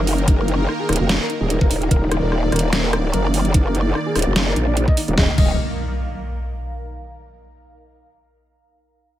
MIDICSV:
0, 0, Header, 1, 7, 480
1, 0, Start_track
1, 0, Key_signature, -6, "minor"
1, 0, Tempo, 408163
1, 327, Time_signature, 4, 2, 24, 8
1, 10811, End_track
2, 0, Start_track
2, 0, Title_t, "Analog synth pad"
2, 0, Program_c, 0, 89
2, 0, Note_on_c, 0, 63, 77
2, 0, Note_on_c, 0, 70, 70
2, 0, Note_on_c, 0, 77, 79
2, 2636, Note_on_c, 0, 82, 74
2, 2658, Note_off_c, 0, 77, 0
2, 6072, Note_off_c, 0, 63, 0
2, 6087, Note_off_c, 0, 70, 0
2, 6087, Note_on_c, 0, 63, 79
2, 6112, Note_off_c, 0, 82, 0
2, 6164, Note_on_c, 0, 70, 78
2, 6238, Note_on_c, 0, 77, 81
2, 7959, Note_off_c, 0, 70, 0
2, 7959, Note_off_c, 0, 77, 0
2, 7960, Note_off_c, 0, 63, 0
2, 10811, End_track
3, 0, Start_track
3, 0, Title_t, "Grand piano"
3, 0, Program_c, 1, 0
3, 87, Note_on_c, 1, 63, 64
3, 174, Note_off_c, 1, 63, 0
3, 327, Note_on_c, 1, 63, 65
3, 414, Note_off_c, 1, 63, 0
3, 456, Note_on_c, 1, 70, 94
3, 531, Note_off_c, 1, 70, 0
3, 567, Note_on_c, 1, 63, 63
3, 654, Note_off_c, 1, 63, 0
3, 696, Note_on_c, 1, 63, 64
3, 771, Note_off_c, 1, 63, 0
3, 807, Note_on_c, 1, 63, 66
3, 894, Note_off_c, 1, 63, 0
3, 936, Note_on_c, 1, 68, 87
3, 1011, Note_off_c, 1, 68, 0
3, 1047, Note_on_c, 1, 63, 63
3, 1134, Note_off_c, 1, 63, 0
3, 1176, Note_on_c, 1, 66, 87
3, 1251, Note_off_c, 1, 66, 0
3, 1287, Note_on_c, 1, 63, 61
3, 1374, Note_off_c, 1, 63, 0
3, 1417, Note_on_c, 1, 70, 87
3, 1491, Note_off_c, 1, 70, 0
3, 1528, Note_on_c, 1, 63, 61
3, 1615, Note_off_c, 1, 63, 0
3, 1657, Note_on_c, 1, 68, 88
3, 1731, Note_off_c, 1, 68, 0
3, 1768, Note_on_c, 1, 63, 71
3, 1855, Note_off_c, 1, 63, 0
3, 1897, Note_on_c, 1, 70, 94
3, 1971, Note_off_c, 1, 70, 0
3, 2008, Note_on_c, 1, 63, 66
3, 2095, Note_off_c, 1, 63, 0
3, 2137, Note_on_c, 1, 63, 68
3, 2211, Note_off_c, 1, 63, 0
3, 2248, Note_on_c, 1, 70, 95
3, 2335, Note_off_c, 1, 70, 0
3, 2377, Note_on_c, 1, 63, 63
3, 2451, Note_off_c, 1, 63, 0
3, 2488, Note_on_c, 1, 63, 60
3, 2575, Note_off_c, 1, 63, 0
3, 2617, Note_on_c, 1, 70, 86
3, 2691, Note_off_c, 1, 70, 0
3, 2728, Note_on_c, 1, 63, 62
3, 2814, Note_off_c, 1, 63, 0
3, 2857, Note_on_c, 1, 63, 64
3, 2931, Note_off_c, 1, 63, 0
3, 2967, Note_on_c, 1, 70, 88
3, 3054, Note_off_c, 1, 70, 0
3, 3097, Note_on_c, 1, 63, 64
3, 3171, Note_off_c, 1, 63, 0
3, 3207, Note_on_c, 1, 63, 59
3, 3294, Note_off_c, 1, 63, 0
3, 3337, Note_on_c, 1, 70, 87
3, 3411, Note_off_c, 1, 70, 0
3, 3448, Note_on_c, 1, 63, 63
3, 3535, Note_off_c, 1, 63, 0
3, 3577, Note_on_c, 1, 63, 64
3, 3651, Note_off_c, 1, 63, 0
3, 3688, Note_on_c, 1, 70, 100
3, 3774, Note_off_c, 1, 70, 0
3, 3817, Note_on_c, 1, 63, 61
3, 3891, Note_off_c, 1, 63, 0
3, 3928, Note_on_c, 1, 63, 60
3, 4015, Note_off_c, 1, 63, 0
3, 4168, Note_on_c, 1, 63, 62
3, 4254, Note_off_c, 1, 63, 0
3, 4297, Note_on_c, 1, 70, 93
3, 4371, Note_off_c, 1, 70, 0
3, 4408, Note_on_c, 1, 63, 64
3, 4494, Note_off_c, 1, 63, 0
3, 4537, Note_on_c, 1, 63, 65
3, 4611, Note_off_c, 1, 63, 0
3, 4648, Note_on_c, 1, 63, 67
3, 4735, Note_off_c, 1, 63, 0
3, 4777, Note_on_c, 1, 68, 91
3, 4851, Note_off_c, 1, 68, 0
3, 4888, Note_on_c, 1, 63, 63
3, 4974, Note_off_c, 1, 63, 0
3, 5017, Note_on_c, 1, 66, 87
3, 5091, Note_off_c, 1, 66, 0
3, 5128, Note_on_c, 1, 63, 62
3, 5215, Note_off_c, 1, 63, 0
3, 5257, Note_on_c, 1, 70, 87
3, 5331, Note_off_c, 1, 70, 0
3, 5367, Note_on_c, 1, 63, 62
3, 5454, Note_off_c, 1, 63, 0
3, 5497, Note_on_c, 1, 74, 88
3, 5571, Note_off_c, 1, 74, 0
3, 5608, Note_on_c, 1, 63, 68
3, 5695, Note_off_c, 1, 63, 0
3, 5737, Note_on_c, 1, 75, 95
3, 5811, Note_off_c, 1, 75, 0
3, 5847, Note_on_c, 1, 63, 64
3, 5934, Note_off_c, 1, 63, 0
3, 5976, Note_on_c, 1, 63, 67
3, 6051, Note_off_c, 1, 63, 0
3, 6087, Note_on_c, 1, 75, 90
3, 6228, Note_off_c, 1, 75, 0
3, 6328, Note_on_c, 1, 75, 89
3, 6509, Note_off_c, 1, 75, 0
3, 10811, End_track
4, 0, Start_track
4, 0, Title_t, "Supersaw synth"
4, 0, Program_c, 2, 81
4, 0, Note_on_c, 2, 51, 83
4, 0, Note_on_c, 2, 58, 73
4, 0, Note_on_c, 2, 70, 89
4, 2234, Note_off_c, 2, 70, 0
4, 2247, Note_on_c, 2, 74, 92
4, 6040, Note_off_c, 2, 51, 0
4, 6040, Note_off_c, 2, 58, 0
4, 6074, Note_off_c, 2, 74, 0
4, 6087, Note_on_c, 2, 51, 75
4, 6087, Note_on_c, 2, 58, 66
4, 6087, Note_on_c, 2, 70, 80
4, 6310, Note_off_c, 2, 51, 0
4, 6310, Note_off_c, 2, 58, 0
4, 6310, Note_off_c, 2, 70, 0
4, 10811, End_track
5, 0, Start_track
5, 0, Title_t, "Wobble bass"
5, 0, Program_c, 3, 39
5, 0, Note_on_c, 3, 30, 94
5, 789, Note_off_c, 3, 30, 0
5, 1046, Note_on_c, 3, 27, 97
5, 1155, Note_off_c, 3, 27, 0
5, 1176, Note_on_c, 3, 29, 99
5, 1395, Note_off_c, 3, 29, 0
5, 1656, Note_on_c, 3, 27, 90
5, 1875, Note_off_c, 3, 27, 0
5, 1896, Note_on_c, 3, 30, 103
5, 1989, Note_off_c, 3, 30, 0
5, 2007, Note_on_c, 3, 27, 94
5, 2229, Note_off_c, 3, 27, 0
5, 2247, Note_on_c, 3, 27, 92
5, 2595, Note_off_c, 3, 27, 0
5, 2616, Note_on_c, 3, 27, 100
5, 2949, Note_off_c, 3, 27, 0
5, 2967, Note_on_c, 3, 27, 95
5, 3461, Note_off_c, 3, 27, 0
5, 3461, Note_on_c, 3, 26, 95
5, 3669, Note_off_c, 3, 26, 0
5, 3687, Note_on_c, 3, 30, 96
5, 4629, Note_off_c, 3, 30, 0
5, 4887, Note_on_c, 3, 27, 96
5, 4996, Note_off_c, 3, 27, 0
5, 5017, Note_on_c, 3, 30, 98
5, 5349, Note_off_c, 3, 30, 0
5, 5367, Note_on_c, 3, 34, 97
5, 5715, Note_off_c, 3, 34, 0
5, 5977, Note_on_c, 3, 27, 97
5, 6069, Note_off_c, 3, 27, 0
5, 6087, Note_on_c, 3, 27, 91
5, 6228, Note_off_c, 3, 27, 0
5, 6327, Note_on_c, 3, 27, 100
5, 6550, Note_off_c, 3, 27, 0
5, 10811, End_track
6, 0, Start_track
6, 0, Title_t, "Impact"
6, 0, Program_c, 4, 103
6, 6087, Note_on_c, 4, 60, 69
6, 8007, Note_off_c, 4, 60, 0
6, 10811, End_track
7, 0, Start_track
7, 0, Title_t, "Drums"
7, 86, Note_on_c, 9, 46, 92
7, 203, Note_off_c, 9, 46, 0
7, 215, Note_on_c, 9, 42, 35
7, 326, Note_off_c, 9, 42, 0
7, 326, Note_on_c, 9, 36, 123
7, 326, Note_on_c, 9, 42, 80
7, 444, Note_off_c, 9, 36, 0
7, 444, Note_off_c, 9, 42, 0
7, 566, Note_on_c, 9, 42, 50
7, 683, Note_off_c, 9, 42, 0
7, 806, Note_on_c, 9, 37, 55
7, 924, Note_off_c, 9, 37, 0
7, 1046, Note_on_c, 9, 37, 55
7, 1046, Note_on_c, 9, 42, 47
7, 1089, Note_off_c, 9, 42, 0
7, 1089, Note_on_c, 9, 42, 64
7, 1126, Note_off_c, 9, 42, 0
7, 1126, Note_on_c, 9, 42, 81
7, 1164, Note_off_c, 9, 37, 0
7, 1244, Note_off_c, 9, 42, 0
7, 1286, Note_on_c, 9, 38, 123
7, 1286, Note_on_c, 9, 42, 83
7, 1404, Note_off_c, 9, 38, 0
7, 1404, Note_off_c, 9, 42, 0
7, 1526, Note_on_c, 9, 42, 51
7, 1644, Note_off_c, 9, 42, 0
7, 1766, Note_on_c, 9, 42, 76
7, 1884, Note_off_c, 9, 42, 0
7, 1896, Note_on_c, 9, 36, 105
7, 2006, Note_on_c, 9, 46, 96
7, 2013, Note_off_c, 9, 36, 0
7, 2124, Note_off_c, 9, 46, 0
7, 2136, Note_on_c, 9, 42, 39
7, 2247, Note_off_c, 9, 42, 0
7, 2247, Note_on_c, 9, 36, 113
7, 2247, Note_on_c, 9, 42, 80
7, 2364, Note_off_c, 9, 36, 0
7, 2364, Note_off_c, 9, 42, 0
7, 2487, Note_on_c, 9, 37, 59
7, 2487, Note_on_c, 9, 42, 54
7, 2604, Note_off_c, 9, 37, 0
7, 2604, Note_off_c, 9, 42, 0
7, 2727, Note_on_c, 9, 37, 56
7, 2844, Note_off_c, 9, 37, 0
7, 2967, Note_on_c, 9, 37, 52
7, 2967, Note_on_c, 9, 42, 50
7, 3010, Note_off_c, 9, 42, 0
7, 3010, Note_on_c, 9, 42, 66
7, 3047, Note_off_c, 9, 42, 0
7, 3047, Note_on_c, 9, 42, 84
7, 3085, Note_off_c, 9, 37, 0
7, 3164, Note_off_c, 9, 42, 0
7, 3207, Note_on_c, 9, 38, 117
7, 3207, Note_on_c, 9, 42, 85
7, 3324, Note_off_c, 9, 38, 0
7, 3324, Note_off_c, 9, 42, 0
7, 3447, Note_on_c, 9, 37, 79
7, 3447, Note_on_c, 9, 42, 57
7, 3564, Note_off_c, 9, 37, 0
7, 3564, Note_off_c, 9, 42, 0
7, 3687, Note_on_c, 9, 42, 78
7, 3804, Note_off_c, 9, 42, 0
7, 3927, Note_on_c, 9, 46, 97
7, 4044, Note_off_c, 9, 46, 0
7, 4056, Note_on_c, 9, 42, 38
7, 4166, Note_off_c, 9, 42, 0
7, 4166, Note_on_c, 9, 42, 85
7, 4167, Note_on_c, 9, 36, 119
7, 4284, Note_off_c, 9, 42, 0
7, 4285, Note_off_c, 9, 36, 0
7, 4407, Note_on_c, 9, 42, 53
7, 4524, Note_off_c, 9, 42, 0
7, 4646, Note_on_c, 9, 37, 52
7, 4764, Note_off_c, 9, 37, 0
7, 4886, Note_on_c, 9, 37, 51
7, 4886, Note_on_c, 9, 46, 65
7, 4929, Note_on_c, 9, 42, 70
7, 4967, Note_off_c, 9, 42, 0
7, 4967, Note_on_c, 9, 42, 84
7, 5004, Note_off_c, 9, 37, 0
7, 5004, Note_off_c, 9, 46, 0
7, 5084, Note_off_c, 9, 42, 0
7, 5127, Note_on_c, 9, 38, 118
7, 5127, Note_on_c, 9, 42, 89
7, 5244, Note_off_c, 9, 38, 0
7, 5244, Note_off_c, 9, 42, 0
7, 5367, Note_on_c, 9, 42, 57
7, 5484, Note_off_c, 9, 42, 0
7, 5607, Note_on_c, 9, 42, 84
7, 5724, Note_off_c, 9, 42, 0
7, 5736, Note_on_c, 9, 36, 108
7, 5846, Note_on_c, 9, 46, 97
7, 5854, Note_off_c, 9, 36, 0
7, 5964, Note_off_c, 9, 46, 0
7, 5976, Note_on_c, 9, 42, 42
7, 6087, Note_on_c, 9, 36, 116
7, 6087, Note_on_c, 9, 38, 83
7, 6094, Note_off_c, 9, 42, 0
7, 6204, Note_off_c, 9, 38, 0
7, 6205, Note_off_c, 9, 36, 0
7, 6326, Note_on_c, 9, 49, 85
7, 6327, Note_on_c, 9, 36, 116
7, 6444, Note_off_c, 9, 49, 0
7, 6445, Note_off_c, 9, 36, 0
7, 10811, End_track
0, 0, End_of_file